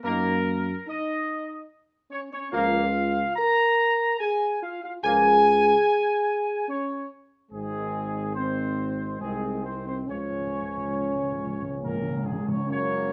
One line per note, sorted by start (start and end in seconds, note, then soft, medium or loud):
0.03 0.74 F#2 medium
0.03 0.34 D#3 medium
0.03 0.70 A#3 medium
0.03 0.34 A#3 medium
0.03 0.84 A#4 medium
0.87 1.66 D#4 medium
0.87 1.66 D#5 medium
2.11 2.30 C#4 medium
2.11 2.21 C#5 medium
2.32 2.52 C#4 medium
2.32 2.51 C#5 medium
2.52 3.24 C#2 medium
2.52 2.84 F3 medium
2.52 2.84 A#3 medium
2.52 3.34 F4 medium
2.52 3.33 F5 loud
3.35 4.17 A#4 medium
3.35 4.16 A#5 loud
4.19 4.59 G#4 medium
4.19 4.59 G#5 loud
4.62 4.82 F4 medium
4.62 4.81 F5 medium
4.82 5.03 F4 medium
4.82 4.92 F5 medium
5.02 5.73 C#2 medium
5.02 5.34 F3 medium
5.02 5.35 A#3 medium
5.02 6.65 G#4 loud
5.02 6.65 G#5 loud
6.68 7.07 C#4 medium
6.68 7.07 C#5 medium
7.51 9.17 G#1 medium
7.51 8.32 D#3 medium
7.51 8.31 G#3 medium
7.51 8.31 C4 medium
7.51 8.31 G#4 medium
8.34 9.17 D#3 medium
8.34 9.17 C4 medium
8.34 9.16 C5 medium
9.19 10.04 C2 soft
9.19 10.04 D#3 medium
9.19 9.60 G#3 medium
9.19 10.04 C4 medium
9.19 9.61 G#4 medium
9.64 9.74 C4 medium
9.64 9.85 C5 medium
9.85 10.06 C4 soft
9.85 9.97 C5 medium
10.06 12.31 C#2 soft
10.06 10.14 C#3 soft
10.06 12.31 F3 soft
10.06 11.80 C#4 medium
10.06 12.35 C#4 medium
10.06 11.77 C#5 medium
10.16 10.22 C#3 soft
10.24 10.30 C#3 soft
10.32 10.38 C#3 soft
10.39 10.46 C#3 soft
10.47 10.54 C#3 soft
10.55 10.61 C#3 soft
10.62 10.68 C#3 soft
10.70 10.76 C#3 soft
10.77 10.83 C#3 soft
10.85 10.91 C#3 soft
10.92 10.99 C#3 soft
11.00 11.07 C#3 soft
11.08 11.15 C#3 soft
11.16 11.23 C#3 soft
11.24 11.31 C#3 soft
11.32 11.37 C#3 soft
11.38 11.45 C#3 soft
11.46 11.53 C#3 medium
11.54 11.61 C#3 medium
11.62 11.69 C#3 medium
11.70 11.77 C#3 medium
11.78 11.85 C#3 medium
11.78 12.21 A#3 medium
11.83 11.92 C#3 medium
11.83 12.23 A#4 medium
11.93 12.00 C#3 medium
12.01 12.08 C#3 medium
12.09 12.15 C#3 medium
12.17 12.24 C#3 medium
12.24 12.31 C#3 medium
12.24 12.45 G#3 soft
12.24 12.47 G#4 medium
12.32 12.38 C#3 medium
12.40 12.47 C#3 medium
12.47 12.54 C#3 medium
12.47 12.64 C#4 soft
12.47 12.68 C#5 medium
12.55 12.63 C#3 medium
12.66 13.13 F#1 medium
12.66 13.13 F#3 medium
12.66 13.13 A#3 medium
12.66 13.13 C#4 medium
12.70 13.13 C#5 medium